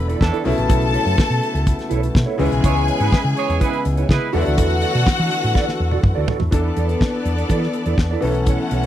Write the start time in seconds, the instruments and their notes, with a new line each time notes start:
Already playing: fingered electric bass E1, grand piano D3 E3 A3 B3 E4, tonewheel organ E3 B3 D4 A4, string section B4 B5
0.08 clean electric guitar E4 A4 D5, closed hi-hat
0.21 fingered electric bass E2, horn section D4 E4 A4, muted clean electric guitar stroke, kick, snare
0.32 clean electric guitar E4 A4 D5, closed hi-hat
0.44 fingered electric bass B1, grand piano C#3 F#3 A3 B3 E4, tonewheel organ A3 E4, clean electric guitar E4 A4 C#5, string section A4 A5, open hi-hat
0.57 fingered electric bass A1, muted clean electric guitar stroke, closed hi-hat
0.69 fingered electric bass B1, clean electric guitar E4 A4 C#5, kick, closed hi-hat
0.81 muted clean electric guitar stroke, closed hi-hat
0.93 clean electric guitar E4 A4 C#5, closed hi-hat
1.05 fingered electric bass F#2, clean electric guitar E4 A4 C#5, closed hi-hat
1.17 muted clean electric guitar stroke, kick, snare
1.29 fingered electric bass B2, muted clean electric guitar stroke
1.43 closed hi-hat
1.53 fingered electric bass C#2, muted clean electric guitar stroke, closed hi-hat
1.67 kick, closed hi-hat
1.77 muted clean electric guitar stroke, snare, closed hi-hat
1.89 fingered electric bass B1, clean electric guitar E4 A4 C#5, closed hi-hat
2.03 muted clean electric guitar stroke, closed hi-hat
2.14 fingered electric bass B2, muted clean electric guitar stroke, kick, snare
2.26 clean electric guitar E4 A4 C#5
2.38 fingered electric bass C#2, grand piano C#3 E3 G#3 B3 E4, tonewheel organ C#3 G#3, clean electric guitar E4 B4 C#5, string section G#4 G#5, open hi-hat
2.52 fingered electric bass B1, closed hi-hat
2.63 fingered electric bass C#2, clean electric guitar E4 B4 C#5, horn section E4 G#4 C#5, kick, closed hi-hat
2.76 muted clean electric guitar stroke, closed hi-hat
2.87 clean electric guitar E4 B4 C#5, closed hi-hat
3.00 fingered electric bass G#2, horn section E4 G#4 B4, clean electric guitar E4 B4 C#5, closed hi-hat
3.12 horn section E4 G#4 B4, kick, snare
3.24 fingered electric bass C#3, muted clean electric guitar stroke
3.36 horn section E4 G#4 C#5, closed hi-hat
3.48 fingered electric bass E2, muted clean electric guitar stroke, closed hi-hat
3.60 clean electric guitar E4 B4 C#5, horn section E4 G#4 B4, kick, closed hi-hat
3.72 muted clean electric guitar stroke, closed hi-hat
3.84 fingered electric bass C#2, muted clean electric guitar stroke, closed hi-hat
3.97 clean electric guitar E4 B4 C#5, closed hi-hat
4.08 fingered electric bass C#3, horn section E4 G#4 B4, muted clean electric guitar stroke, kick, snare
4.21 muted clean electric guitar stroke
4.33 fingered electric bass E2, grand piano D3 F#3 G#3 B3 E4, tonewheel organ E3 D4 F#4 A4, clean electric guitar F#4 A4 D5, string section F#4 F#5, open hi-hat
4.41 grand piano A3
4.46 fingered electric bass D2, clean electric guitar F#4 A4 D5, closed hi-hat
4.57 fingered electric bass E2, clean electric guitar F#4 A4 D5, kick, closed hi-hat
4.68 muted clean electric guitar stroke, closed hi-hat
4.81 clean electric guitar F#4 A4 D5, closed hi-hat
4.93 fingered electric bass B2, clean electric guitar F#4 A4 D5, closed hi-hat
5.06 muted clean electric guitar stroke, kick, snare
5.18 fingered electric bass E3, muted clean electric guitar stroke
5.31 closed hi-hat
5.42 fingered electric bass A2, muted clean electric guitar stroke, closed hi-hat
5.54 clean electric guitar F#4 A4 D5, kick, snare
5.67 muted clean electric guitar stroke, snare
5.79 fingered electric bass E2, muted clean electric guitar stroke
5.91 clean electric guitar F#4 A4 D5, high tom
6.03 fingered electric bass F#2, muted clean electric guitar stroke, kick, mid tom
6.15 fingered electric bass D2, clean electric guitar F#4 A4 D5
6.28 clean electric guitar F#4 A4 D5, floor tom
6.40 fingered electric bass E2, muted clean electric guitar stroke, floor tom
6.51 fingered electric bass E2, grand piano E3 B3 D4 A4, tonewheel organ E3 B3 D4 A4, string section B3 A4 D5, clean electric guitar E4 A4 D5, kick, closed hi-hat
6.64 muted clean electric guitar stroke
6.77 fingered electric bass E2, clean electric guitar E4 A4 D5, closed hi-hat
6.89 clean electric guitar E4 A4 D5, closed hi-hat
7.01 kick, snare
7.13 muted clean electric guitar stroke
7.25 fingered electric bass E2, closed hi-hat
7.38 muted clean electric guitar stroke, closed hi-hat
7.49 fingered electric bass E3, clean electric guitar E4 A4 D5, kick, closed hi-hat
7.61 muted clean electric guitar stroke, snare
7.73 muted clean electric guitar stroke, closed hi-hat
7.86 fingered electric bass E2, clean electric guitar E4 A4 D5, closed hi-hat
7.98 fingered electric bass E2, muted clean electric guitar stroke, kick, snare
8.11 clean electric guitar E4 A4 D5
8.21 fingered electric bass B1, grand piano E3 B3 C#4 A4, tonewheel organ A3 E4, string section C#4 A4 F#5, clean electric guitar E4 A4, open hi-hat
8.25 clean electric guitar C#5
8.35 muted clean electric guitar stroke, closed hi-hat
8.46 clean electric guitar E4 A4 C#5, kick, closed hi-hat
8.61 muted clean electric guitar stroke
8.71 fingered electric bass B1, clean electric guitar E4 A4 C#5, closed hi-hat